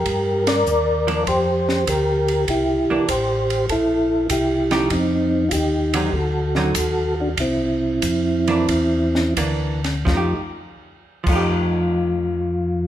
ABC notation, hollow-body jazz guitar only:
X:1
M:4/4
L:1/8
Q:"Swing" 1/4=97
K:Fmix
V:1 name="Hollow-body jazz guitar"
z3 [F,B,D] z4 | z [=E,B,D] z4 z [F,A,_EG] | z3 [D,_G,CE] z [D,^F,CE] z2 | z3 [=E,B,D] z2 [E,B,D] z |
[F,A,EG] z2 [F,A,EG]4- [F,A,EG] |]